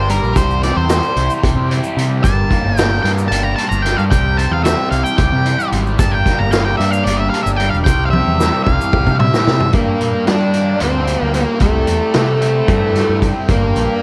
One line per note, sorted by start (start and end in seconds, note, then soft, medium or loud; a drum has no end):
0.00 0.19 G1 medium
0.00 2.20 G3 medium
0.00 0.35 A#3 medium
0.00 0.34 D4 medium
0.00 0.36 D4 medium
0.00 1.43 G4 medium
0.00 0.35 A#4 medium
0.00 0.10 C5 medium
0.09 0.90 G3 medium
0.09 0.35 A#4 medium
0.09 closed hi-hat medium
0.23 0.35 A#1 medium
0.23 shaker soft
0.35 0.71 C2 medium
0.35 1.70 C3 medium
0.35 2.22 E3 medium
0.35 2.21 C4 medium
0.35 2.22 G4 medium
0.35 0.62 C5 medium
0.35 kick loud
0.35 closed hi-hat medium
0.35 shaker medium
0.50 shaker soft
0.63 1.97 C4 medium
0.63 0.77 D5 medium
0.63 snare soft
0.63 closed hi-hat medium
0.77 1.00 E2 medium
0.77 1.30 C5 medium
0.89 1.96 G3 medium
0.89 snare loud
0.89 closed hi-hat medium
0.89 shaker medium
1.03 shaker soft
1.16 1.28 C2 medium
1.16 1.68 E4 medium
1.16 closed hi-hat medium
1.30 shaker medium
1.43 1.55 C2 medium
1.43 3.31 G4 medium
1.43 kick loud
1.43 closed hi-hat medium
1.56 1.79 C3 medium
1.70 2.24 E4 medium
1.70 closed hi-hat medium
1.84 shaker medium
1.97 2.20 C3 medium
1.97 2.77 G3 medium
1.97 closed hi-hat medium
2.23 2.47 G1 medium
2.23 3.58 G2 medium
2.23 5.95 G3 medium
2.23 4.09 A#3 medium
2.23 4.09 D4 medium
2.23 4.09 A#4 medium
2.23 2.80 A5 medium
2.23 kick loud
2.23 closed hi-hat medium
2.23 shaker medium
2.50 3.84 A#3 medium
2.50 kick medium
2.50 closed hi-hat medium
2.64 2.99 G1 medium
2.77 3.84 G3 medium
2.77 3.00 G5 medium
2.77 snare loud
2.77 closed hi-hat medium
2.77 shaker medium
3.03 3.27 G2 medium
3.03 3.57 D4 medium
3.03 3.10 G5 medium
3.03 snare soft
3.03 closed hi-hat medium
3.18 shaker medium
3.28 3.54 G1 medium
3.28 5.18 G4 medium
3.28 3.43 A5 medium
3.28 closed hi-hat medium
3.32 shaker soft
3.43 3.55 A#5 loud
3.56 4.12 D4 medium
3.56 3.69 A5 medium
3.56 closed hi-hat medium
3.69 3.94 G1 medium
3.69 3.82 A#5 loud
3.69 shaker medium
3.82 4.64 G3 medium
3.82 3.97 G5 medium
3.82 snare soft
3.82 closed hi-hat medium
3.97 4.10 G2 medium
3.97 4.02 F5 medium
3.97 shaker soft
4.11 4.46 C2 medium
4.11 5.45 C3 medium
4.11 5.98 E3 medium
4.11 5.98 C4 medium
4.11 5.98 G4 medium
4.11 4.39 G5 medium
4.11 kick loud
4.11 closed hi-hat medium
4.11 shaker medium
4.37 5.72 C4 medium
4.37 4.52 A5 medium
4.37 closed hi-hat medium
4.51 4.74 E2 medium
4.51 4.63 F5 medium
4.64 5.73 G3 medium
4.64 4.89 E5 medium
4.64 snare loud
4.64 closed hi-hat medium
4.64 shaker medium
4.91 5.03 C2 medium
4.91 5.45 E4 medium
4.91 5.04 F5 medium
4.91 closed hi-hat medium
5.04 5.16 G5 medium
5.04 shaker medium
5.17 5.30 C2 loud
5.17 7.06 G4 medium
5.17 5.68 G5 medium
5.17 kick loud
5.17 closed hi-hat medium
5.17 shaker soft
5.32 5.55 C3 medium
5.46 5.99 E4 medium
5.46 closed hi-hat medium
5.60 shaker medium
5.72 5.95 G#1 medium
5.72 6.53 G3 medium
5.72 closed hi-hat medium
5.86 shaker soft
5.99 6.22 G1 medium
5.99 7.33 G2 medium
5.99 9.70 G3 medium
5.99 7.84 A#3 medium
5.99 7.84 D4 medium
5.99 7.85 A#4 medium
5.99 6.13 A5 medium
5.99 kick loud
5.99 closed hi-hat medium
5.99 shaker medium
6.12 6.40 G5 loud
6.26 7.60 A#3 medium
6.26 kick medium
6.26 snare soft
6.26 closed hi-hat medium
6.39 6.74 G1 medium
6.39 6.51 A#5 loud
6.51 7.60 G3 medium
6.51 6.64 F5 loud
6.51 snare loud
6.51 closed hi-hat medium
6.51 shaker medium
6.65 6.77 G5 medium
6.77 7.03 G2 medium
6.77 7.32 D4 medium
6.77 6.91 E5 medium
6.77 closed hi-hat medium
6.91 7.05 F5 medium
6.91 shaker medium
7.04 7.29 G1 loud
7.04 8.93 G4 medium
7.04 7.19 D5 medium
7.04 closed hi-hat medium
7.04 shaker soft
7.17 7.30 E5 medium
7.30 7.86 D4 medium
7.30 7.42 F5 medium
7.30 closed hi-hat medium
7.43 7.69 G1 medium
7.43 7.48 E5 medium
7.43 shaker medium
7.56 8.40 G3 medium
7.56 7.70 G5 medium
7.56 closed hi-hat medium
7.70 7.85 E1 medium
7.70 7.75 F5 medium
7.70 shaker soft
7.84 8.20 C2 loud
7.84 9.21 C3 medium
7.84 9.72 E3 medium
7.84 9.72 C4 medium
7.84 9.72 G4 medium
7.84 8.05 G5 medium
7.84 kick loud
7.84 closed hi-hat medium
7.84 shaker medium
8.06 8.10 F5 medium
8.10 9.47 C4 medium
8.10 8.61 E5 medium
8.10 high tom medium
8.27 8.50 E2 medium
8.40 9.45 G3 medium
8.40 snare medium
8.40 shaker medium
8.64 8.78 C2 medium
8.64 9.19 E4 medium
8.64 9.15 F5 medium
8.64 kick medium
8.64 shaker soft
8.81 shaker medium
8.93 9.05 C2 medium
8.93 9.74 G4 medium
8.93 kick loud
9.07 9.30 C3 medium
9.07 kick medium
9.07 shaker soft
9.20 9.74 E4 medium
9.20 9.70 E5 medium
9.20 mid tom medium
9.34 snare medium
9.34 shaker medium
9.47 9.70 C3 medium
9.47 9.74 G3 medium
9.47 snare loud
9.60 floor tom medium
9.72 11.07 G2 medium
9.72 9.96 G2 medium
9.72 10.24 A#3 medium
9.72 11.60 D4 medium
9.72 14.03 G4 medium
9.72 11.59 A#4 medium
9.72 14.03 G5 medium
9.72 kick medium
9.72 closed hi-hat medium
10.00 10.13 A#2 medium
10.00 11.06 G3 medium
10.00 closed hi-hat medium
10.27 10.74 G3 medium
10.27 10.82 D4 loud
10.27 10.78 D4 medium
10.27 snare loud
10.27 closed hi-hat medium
10.53 11.33 A#3 medium
10.53 closed hi-hat medium
10.80 11.15 D2 medium
10.80 11.34 C4 medium
10.80 11.61 D4 medium
10.80 closed hi-hat medium
11.07 11.88 G3 medium
11.07 closed hi-hat medium
11.22 11.44 D2 medium
11.34 11.61 A#3 medium
11.34 11.60 A#3 medium
11.34 closed hi-hat medium
11.60 11.84 C2 medium
11.60 12.95 C3 medium
11.60 12.15 A3 medium
11.60 13.47 E4 medium
11.60 13.47 C5 medium
11.60 kick medium
11.60 closed hi-hat medium
11.87 12.00 E2 medium
11.87 12.94 G3 medium
11.87 closed hi-hat medium
12.14 12.61 C3 medium
12.14 13.19 A3 medium
12.14 12.66 E4 medium
12.14 snare loud
12.14 closed hi-hat medium
12.41 13.21 C4 medium
12.41 closed hi-hat medium
12.67 13.03 G2 medium
12.67 13.48 E4 medium
12.67 kick loud
12.67 closed hi-hat medium
12.95 13.76 G3 medium
12.95 snare soft
12.95 closed hi-hat medium
13.09 13.32 G2 medium
13.22 13.49 C4 medium
13.22 kick medium
13.22 closed hi-hat medium
13.49 13.72 G1 medium
13.49 14.03 G2 medium
13.49 14.03 A#3 medium
13.49 14.03 D4 medium
13.49 14.03 A#4 medium
13.49 kick loud
13.49 closed hi-hat medium
13.76 13.87 A#1 medium
13.76 14.03 G3 medium
13.76 closed hi-hat medium